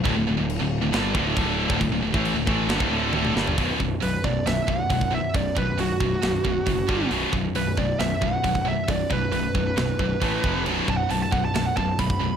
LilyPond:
<<
  \new Staff \with { instrumentName = "Lead electric guitar" } { \time 4/4 \key b \minor \tempo 4 = 135 r1 | r1 | r4 b'8 d''8 e''8 fis''4 e''8 | d''8 b'8 fis'2. |
r4 b'8 d''8 e''8 fis''4 e''8 | d''8 b'8 b'2. | r8 a''16 fis''16 a''16 a''16 fis''16 a''16 a''16 fis''16 a''8 b''4 | }
  \new Staff \with { instrumentName = "Distorted electric guitar" } { \clef bass \time 4/4 \key b \minor <d, a,>16 <d, a,>16 <d, a,>16 <d, a,>8 <d, a,>8 <d, a,>16 <g, d g>8 <d, a, d>8 <d, a, d>8. <d, a,>16 | <d, a,>16 <d, a,>16 <d, a,>16 <a, e a>8 <d, a,>16 <a, e a>8 <g, d>16 <d, a,>16 <d, a, d>8 <d, a, d>8 <g, d g>8 | <b,, fis, b,>8 <b,, fis,>8 <b,, fis,>8 <b,, fis,>8 <b,, fis,>8 <b,, fis,>8 <b,, fis,>8 <b,, fis,>8 | <b,, fis,>8 <b,, fis,>8 <b,, fis,>8 <b,, fis,>8 <b,, fis,>8 <b,, fis,>8 <b,, fis,>8 <g, d g>8 |
<b,, fis, b,>8 <b,, fis,>8 <b,, fis,>8 <b,, fis,>8 <b,, fis,>8 <b,, fis,>8 <b,, fis,>8 <b,, fis,>8 | <b,, fis,>8 <b,, fis,>8 <b,, fis,>8 <b,, fis,>8 <b,, fis,>8 <b,, fis,>8 <a, e a>8 <f, c f>8 | <b,, fis, b,>8 <b,, fis,>8 <b,, fis,>8 <b,, fis,>8 <b,, fis,>8 <b,, fis,>8 <b,, fis,>8 <b,, fis,>8 | }
  \new Staff \with { instrumentName = "Distorted electric guitar" } { \clef bass \time 4/4 \key b \minor <d, a,>16 <d, a,>16 <d, a,>16 <d, a,>8 <d, a,>8 <d, a,>16 <g, d g>8 <d, a, d>8 <d, a, d>8. <d, a,>16 | <d, a,>16 <d, a,>16 <d, a,>16 <a, e a>8 <d, a,>16 <a, e a>8 <g, d>16 <d, a,>16 <d, a, d>8 <d, a, d>8 <g, d g>8 | <b,, fis, b,>8 <b,, fis,>8 <b,, fis,>8 <b,, fis,>8 <b,, fis,>8 <b,, fis,>8 <b,, fis,>8 <b,, fis,>8 | <b,, fis,>8 <b,, fis,>8 <b,, fis,>8 <b,, fis,>8 <b,, fis,>8 <b,, fis,>8 <b,, fis,>8 <g, d g>8 |
<b,, fis, b,>8 <b,, fis,>8 <b,, fis,>8 <b,, fis,>8 <b,, fis,>8 <b,, fis,>8 <b,, fis,>8 <b,, fis,>8 | <b,, fis,>8 <b,, fis,>8 <b,, fis,>8 <b,, fis,>8 <b,, fis,>8 <b,, fis,>8 <a, e a>8 <f, c f>8 | <b,, fis, b,>8 <b,, fis,>8 <b,, fis,>8 <b,, fis,>8 <b,, fis,>8 <b,, fis,>8 <b,, fis,>8 <b,, fis,>8 | }
  \new Staff \with { instrumentName = "Picked electric bass" } { \clef bass \time 4/4 \key b \minor d,,16 d,,16 d,,16 d,,8 d,,8 d,,16 g,,8 d,,8 d,,8. d,,16 | d,,16 d,,16 d,,16 a,,8 d,,16 a,,8 g,,16 d,,16 d,,8 d,,8 g,,8 | b,,,8 b,,,8 b,,,8 b,,,8 b,,,8 b,,,8 b,,,4 | b,,,8 b,,,8 b,,,8 b,,,8 b,,,8 b,,,8 fis,,8 g,,8 |
b,,,8 b,,,8 b,,,8 b,,,8 b,,,8 b,,,8 b,,,4 | b,,,8 b,,,8 b,,,8 b,,,8 b,,,8 b,,,8 a,,8 f,,8 | b,,,8 b,,,8 b,,,8 b,,,8 b,,,8 b,,,8 b,,,4 | }
  \new DrumStaff \with { instrumentName = "Drums" } \drummode { \time 4/4 <cymc bd>4 cymc4 <cymc sn>8 bd8 <cymc bd>8. bd16 | <cymc bd>8. bd16 cymc8 bd8 <cymc sn>16 bd8. tommh16 toml16 sn16 tomfh16 | <hho bd>8 bd8 hho8 bd8 <hho sn>8 bd8 <hho bd>16 bd8. | <hho bd>8 bd8 hho8 bd8 <hho sn>8 bd8 <hho bd>8 bd8 |
hho8 bd8 hho8 bd8 <hho sn>8 bd8 <hho bd>16 bd8. | <hho bd>8 bd8 hho8 bd8 <hho sn>8 bd8 <hho bd>8 bd8 | cymc8 bd8 hho8 bd8 <hho sn>8 bd8 <hho bd>16 bd8. | }
>>